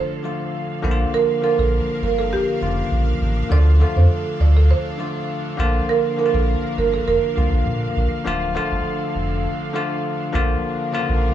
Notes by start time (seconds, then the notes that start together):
Already playing: D3 F3 A3 D4 F4 A4 C5 F5
0.23 D3 F3 A3 F4
0.82 A#1 D3 F3 A#3 E4 A#4
0.91 F4
1.14 A#4
1.41 D3 F3 A#3 F4 A#4
1.58 A#1 A4
2.02 G1 A#4
2.19 A4
2.33 G4
2.60 F1 C#3 F3 A#3 F4
2.67 D3
2.91 A#1
3.21 A1
3.49 D2 D3 F3 A3 F4 A4 D5
3.79 D3 F3 A3 F4 A4
3.96 F2 C5
4.40 D2 D5
4.57 A4
4.71 C5
4.98 D3 F3 A3 F4
5.57 A#1 D3 F3 A#3 F4 A#4 F5
5.89 A#4
6.17 D3 F3 A#3 E4 A#4
6.26 F4
6.34 A#1 A4
6.78 G1 A#4
6.94 A4
7.07 F1 A#4
7.35 C2 D3 F3 A#3 F4
7.52 A#1
7.67 A#2
7.96 A#1
8.25 D1 D3 F3 A3 D4 F4 A4
8.54 D3 F3 A3 F4
8.71 G1
9.15 F1
9.73 D3 F3 A3 F4
10.32 A#1 D3 F3 A#3 F4 A#4 F5
10.92 C#3 F3 A#3 F4
10.98 D3
11.09 A#1